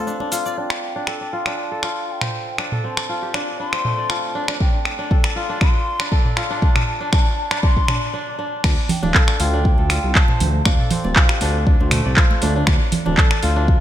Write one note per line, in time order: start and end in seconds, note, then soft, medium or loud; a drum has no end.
0.00 1.50 C4 medium
0.00 0.32 F4 medium
0.00 0.61 G4 medium
0.00 1.07 A4 medium
0.07 0.20 D4 medium
0.07 shaker soft
0.20 0.57 D4 medium
0.20 muted conga medium
0.32 1.33 F4 loud
0.32 open hi-hat medium
0.32 shaker medium
0.46 1.20 D5 medium
0.46 shaker soft
0.57 0.95 D4 medium
0.57 1.59 G5 medium
0.70 finger snap medium
0.96 1.46 D4 medium
1.07 1.71 A4 loud
1.07 finger snap medium
1.21 2.32 D5 medium
1.33 1.83 F4 loud
1.46 2.59 D4 loud
1.46 finger snap medium
1.58 2.07 A5 medium
1.72 2.72 A4 medium
1.83 3.09 F4 loud
1.83 finger snap medium
2.08 2.13 A5 medium
2.12 2.60 G5 medium
2.21 3.41 C5 medium
2.21 finger snap medium
2.21 mid tom medium
2.58 3.34 D4 medium
2.58 3.59 A5 loud
2.58 finger snap medium
2.72 4.04 A4 medium
2.72 mid tom medium
2.84 3.73 C4 medium
2.97 3.98 D5 medium
2.97 finger snap medium
3.09 4.10 F4 medium
3.22 4.64 G4 medium
3.34 3.59 D4 loud
3.34 finger snap medium
3.60 4.35 D4 medium
3.60 4.12 C6 loud
3.73 5.53 C4 medium
3.73 finger snap medium
3.85 5.85 A3 medium
3.85 mid tom medium
3.98 5.09 D5 medium
4.10 5.36 F4 medium
4.10 4.60 A5 loud
4.10 finger snap medium
4.35 4.48 D4 loud
4.48 4.60 D4 loud
4.48 finger snap loud
4.60 4.98 D4 medium
4.60 5.31 G5 medium
4.60 kick loud
4.85 finger snap medium
4.99 5.49 D4 medium
5.11 6.11 A4 medium
5.11 kick loud
5.24 6.25 D5 medium
5.24 finger snap medium
5.36 6.37 F4 loud
5.49 5.61 D4 medium
5.61 5.99 D4 medium
5.61 6.14 C6 loud
5.61 finger snap medium
5.61 kick loud
6.00 6.50 D4 medium
6.00 finger snap loud
6.12 7.43 A4 medium
6.12 6.63 A5 loud
6.12 kick loud
6.25 7.36 D5 medium
6.25 mid tom medium
6.37 7.89 F4 loud
6.37 finger snap medium
6.50 6.62 D4 loud
6.62 7.00 D4 medium
6.62 7.66 A5 loud
6.62 kick loud
6.76 finger snap medium
6.76 mid tom medium
7.01 7.12 D4 loud
7.12 7.50 D4 medium
7.12 finger snap medium
7.12 kick loud
7.51 7.62 D4 loud
7.51 finger snap medium
7.63 7.88 D4 medium
7.63 8.14 C6 loud
7.63 kick loud
7.77 kick medium
7.88 8.13 D4 medium
7.88 finger snap medium
7.88 mid tom medium
8.14 8.38 D4 medium
8.39 8.63 D4 medium
8.64 8.75 D2 loud
8.64 9.02 D4 medium
8.64 finger snap loud
8.64 kick loud
8.64 crash loud
8.64 muted conga soft
8.64 high conga loud
8.89 9.05 G5 medium
8.89 open hi-hat loud
8.89 low conga loud
9.03 9.13 D1 medium
9.03 9.53 D4 loud
9.03 9.39 F5 medium
9.03 muted conga soft
9.03 high conga medium
9.03 low conga medium
9.14 9.78 A4 loud
9.14 kick loud
9.14 clap loud
9.28 10.39 D5 medium
9.28 finger snap medium
9.39 9.75 D2 medium
9.39 9.90 F4 loud
9.39 10.17 G5 loud
9.39 9.44 A5 medium
9.39 open hi-hat medium
9.39 muted conga medium
9.53 10.65 D4 loud
9.65 kick loud
9.78 9.99 D2 loud
9.78 10.79 A4 medium
9.78 muted conga soft
9.90 11.16 F4 loud
9.90 finger snap loud
9.90 open hi-hat medium
10.04 10.13 C2 loud
10.15 10.65 A5 loud
10.15 kick loud
10.15 clap loud
10.28 11.48 C5 medium
10.28 mid tom medium
10.28 muted conga medium
10.28 high conga medium
10.40 10.62 D2 medium
10.40 open hi-hat medium
10.40 high conga loud
10.40 low conga loud
10.65 10.77 D2 loud
10.65 11.41 D4 medium
10.65 11.13 F5 medium
10.65 finger snap loud
10.65 kick loud
10.65 muted conga medium
10.65 high conga loud
10.79 12.11 A4 medium
10.79 mid tom medium
10.91 11.80 C4 medium
10.91 open hi-hat loud
10.91 low conga loud
11.04 11.14 D1 medium
11.04 12.05 D5 medium
11.04 muted conga soft
11.04 high conga medium
11.16 12.17 F4 medium
11.16 kick loud
11.16 clap loud
11.29 12.71 G4 medium
11.29 finger snap medium
11.41 11.76 D2 loud
11.41 11.67 D4 loud
11.41 open hi-hat medium
11.41 muted conga soft
11.67 12.42 D4 medium
11.67 kick loud
11.80 12.01 D2 loud
11.80 13.60 C4 medium
11.80 muted conga soft
11.91 13.80 A3 medium
11.91 finger snap loud
11.91 mid tom medium
11.91 open hi-hat loud
12.06 12.15 C2 loud
12.06 13.16 D5 medium
12.17 13.42 F4 medium
12.17 kick loud
12.17 clap loud
12.31 muted conga medium
12.31 high conga medium
12.42 12.63 D2 medium
12.42 12.55 D4 loud
12.42 open hi-hat loud
12.42 high conga loud
12.56 12.67 D4 loud
12.67 12.79 D2 loud
12.67 finger snap loud
12.67 kick loud
12.67 muted conga soft
12.67 high conga loud
12.92 open hi-hat medium
12.92 low conga loud
13.06 13.16 D1 medium
13.06 13.56 D4 loud
13.06 muted conga soft
13.06 high conga medium
13.06 low conga medium
13.17 13.80 A4 loud
13.17 kick loud
13.17 clap loud
13.31 13.80 D5 medium
13.31 finger snap medium
13.43 13.78 D2 medium
13.43 13.80 F4 loud
13.43 open hi-hat loud
13.43 muted conga soft
13.56 13.80 D4 loud
13.68 kick loud